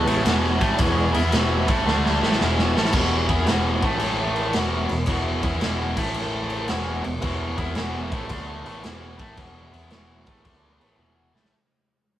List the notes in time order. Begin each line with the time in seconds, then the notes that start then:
Already playing: E3 G#3 B3
0.06 A1 A2 E3 A3 C#5, ride
0.23 E1 E2 B2 E3, snare, ride
0.29 B4
0.44 C#5, snare
0.59 A1 A2 E3 A3, kick, snare, ride
0.65 D5
0.77 E1 E2 B2 E3, kick, ride
0.82 E3 G#3 B3 C#5
0.99 D5
1.13 E2 E3 B3 E4 E5, ride
1.32 E1 E2 B2 E3, snare, ride
1.36 E5
1.67 A1 A2 E3 A3, kick, ride
1.86 D2 D3 A3 D4, snare
2.06 snare
2.20 A1 A2 E3 A3, snare
2.32 snare
2.39 E1 E2 B2 E3, snare
2.59 snare
2.75 A1 A2 E3 A3, snare
2.85 snare
2.92 E1 E2 B2 E3, kick, crash
3.28 E2 E3 B3 E4, kick, crash
3.47 E1 E2 B2 E3, snare, crash
3.82 A1 A2 E3 A3, kick, crash
4.00 crash
4.36 crash
4.53 E1 E2 B2 E3, snare, crash
4.89 E1 E2 B2, snare, crash
5.06 E1 E2 B2 E3, kick, crash
5.43 E2 E3 B3 E4, kick, crash
5.60 E1 E2 B2 E3, snare, crash
5.96 A1 A2 E3 A3, kick, crash
6.14 crash
6.50 crash
6.68 E1 E2 B2 E3, snare, crash
7.04 E1 E2 B2, crash
7.20 E1 E2 B2 E3 B3 E4 G#4 B4, kick, crash
7.57 E2 E3 B3 E4, kick, crash
7.75 E1 E2 B2 E3, snare, crash
8.11 A1 A2 E3 A3, kick, crash
8.29 D2 D3 A3 D4, kick, crash
8.64 A1 A2 E3 A3, crash
8.81 E1 E2 B2 E3, snare, crash
9.18 A1 A2 E3 A3, kick, crash
9.37 E1 E2 B2 E3, kick, crash
9.72 E2 E3 B3 E4, crash
9.90 E1 E2 B2 E3, snare, crash
10.26 A1 A2 E3 A3, kick, crash
10.44 D2 D3 A3 D4, kick, crash
10.80 A1 A2 E3 A3, crash
10.97 E1 E2 B2 E3, high tom
11.33 A1 A2 E3 A3, snare
11.45 snare